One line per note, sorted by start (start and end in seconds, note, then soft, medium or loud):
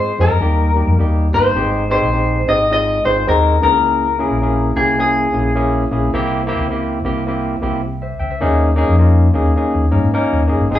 0.00 0.11 G#3 medium
0.00 0.12 C4 medium
0.00 0.12 F4 medium
0.00 0.12 G#4 medium
0.00 0.21 C5 medium
0.18 0.29 F2 medium
0.18 0.36 G#3 medium
0.18 0.37 C4 medium
0.18 0.37 F4 medium
0.18 0.37 G4 medium
0.18 0.96 A#4 medium
0.40 0.80 D#2 loud
0.40 0.69 G3 medium
0.40 0.69 A#3 medium
0.40 0.69 D#4 medium
0.40 0.69 G4 medium
0.75 0.93 G3 medium
0.75 0.94 A#3 medium
0.75 0.94 D#4 medium
0.75 0.94 G4 medium
0.87 0.97 F2 medium
0.99 1.29 D#2 medium
0.99 1.26 G3 medium
0.99 1.26 A#3 medium
0.99 1.27 D#4 medium
0.99 1.27 G4 medium
1.34 1.53 G1 medium
1.34 1.51 G3 medium
1.34 1.52 A#3 medium
1.34 1.52 D#4 medium
1.34 1.52 G4 medium
1.34 1.90 C5 medium
1.55 1.95 G#1 loud
1.55 1.83 G#3 medium
1.55 1.83 C4 medium
1.55 1.84 D#4 medium
1.55 1.84 G4 loud
1.90 2.08 G#3 medium
1.90 2.08 C4 medium
1.90 2.09 D#4 medium
1.90 2.09 G4 loud
1.90 2.48 C5 loud
2.02 2.41 A#1 medium
2.12 2.40 G#3 medium
2.12 2.40 C4 medium
2.12 2.41 D#4 medium
2.12 2.41 G4 medium
2.47 2.97 G#1 medium
2.47 2.65 G#3 medium
2.47 2.66 C4 medium
2.47 2.66 D#4 medium
2.47 2.66 G4 medium
2.47 2.71 D#5 medium
2.70 2.98 G#3 medium
2.70 2.98 C4 medium
2.70 2.98 D#4 medium
2.70 2.98 F4 medium
2.70 3.05 D#5 loud
3.05 3.25 G#1 medium
3.05 3.23 G#3 medium
3.05 3.23 C4 medium
3.05 3.23 D#4 medium
3.05 3.24 F4 medium
3.05 3.28 C5 medium
3.27 3.57 D#2 medium
3.27 3.55 G#3 loud
3.27 3.55 C4 medium
3.27 3.55 D#4 medium
3.27 3.55 G4 loud
3.27 3.62 A#4 medium
3.61 4.21 C#2 loud
3.61 4.05 A#3 medium
3.61 4.05 C#4 medium
3.61 3.67 D#4 medium
3.61 4.06 G#4 medium
3.61 4.73 A#4 medium
3.69 4.09 E4 medium
4.19 4.37 A#3 medium
4.19 4.37 C#4 medium
4.19 4.37 E4 medium
4.19 4.38 G#4 loud
4.31 4.70 A#1 medium
4.42 4.69 A#3 medium
4.42 4.69 C#4 medium
4.42 4.70 E4 medium
4.42 4.70 G#4 medium
4.76 5.26 C2 medium
4.76 4.94 A#3 medium
4.76 4.94 C#4 medium
4.76 4.94 E4 medium
4.76 4.95 G4 medium
4.76 4.98 G#4 medium
4.98 5.26 A#3 medium
4.98 5.26 C#4 medium
4.98 5.26 E4 medium
4.98 5.27 G#4 medium
4.98 5.53 G#4 medium
5.33 5.83 A#1 medium
5.33 5.51 A#3 medium
5.33 5.51 C#4 medium
5.33 5.52 E4 medium
5.33 5.52 G#4 medium
5.56 5.83 A#3 medium
5.56 5.83 C#4 medium
5.56 5.84 E4 medium
5.56 5.84 G#4 loud
5.91 6.11 A#1 medium
5.91 6.09 A#3 medium
5.91 6.09 C#4 medium
5.91 6.10 E4 medium
5.91 6.10 G#4 loud
6.13 6.52 C2 loud
6.13 6.41 A#3 loud
6.13 6.41 C4 loud
6.13 6.42 E4 loud
6.13 6.42 G4 loud
6.47 6.65 A#3 loud
6.47 6.66 C4 loud
6.47 6.66 E4 loud
6.47 6.66 G4 loud
6.59 6.98 C#2 medium
6.70 6.98 A#3 medium
6.70 6.98 C4 medium
6.70 6.98 E4 medium
6.70 6.99 G4 medium
7.05 7.54 C2 medium
7.05 7.23 A#3 medium
7.05 7.23 C4 medium
7.05 7.23 E4 medium
7.05 7.23 G4 loud
7.27 7.55 A#3 medium
7.27 7.55 C4 medium
7.27 7.55 E4 medium
7.27 7.56 G4 loud
7.62 8.12 C2 medium
7.62 7.80 A#3 medium
7.62 7.80 C4 medium
7.62 7.80 E4 medium
7.62 7.81 G4 loud
8.02 8.19 C5 medium
8.02 8.19 E5 medium
8.20 8.39 C#2 medium
8.20 8.29 E5 medium
8.20 8.30 G5 medium
8.31 8.58 C5 medium
8.31 8.58 E5 medium
8.41 8.82 D#2 loud
8.41 8.69 A#3 loud
8.41 8.69 C#4 loud
8.41 8.69 D#4 loud
8.41 8.70 G#4 loud
8.76 8.94 A#3 loud
8.76 8.95 C#4 loud
8.76 8.95 D#4 loud
8.76 8.95 G#4 loud
8.88 9.28 F2 medium
8.99 9.27 A#3 medium
8.99 9.27 C#4 medium
8.99 9.27 D#4 medium
8.99 9.28 F4 medium
9.34 9.54 D#2 medium
9.34 9.52 A#3 medium
9.34 9.52 C#4 medium
9.34 9.52 D#4 medium
9.34 9.53 G#4 loud
9.56 9.84 A#3 medium
9.56 9.84 C#4 medium
9.56 9.84 D#4 medium
9.56 9.85 G#4 loud
9.75 9.89 D#2 medium
9.91 10.02 G2 medium
9.91 10.09 A#3 medium
9.91 10.09 C#4 medium
9.91 10.09 D#4 medium
9.91 10.10 A#4 medium
10.04 10.13 G#2 medium
10.14 10.41 A#3 loud
10.14 10.42 C#4 loud
10.14 10.42 D#4 loud
10.14 10.42 A#4 loud
10.33 10.47 D#2 medium
10.47 10.60 F1 medium
10.47 10.66 A#3 medium
10.47 10.66 C#4 medium
10.47 10.66 D#4 medium
10.47 10.67 G#4 medium
10.61 10.70 G1 medium
10.70 10.79 G#1 loud
10.70 10.79 G#3 medium
10.70 10.79 C4 medium
10.70 10.79 D#4 medium
10.70 10.79 G#4 loud
10.75 10.79 G#4 medium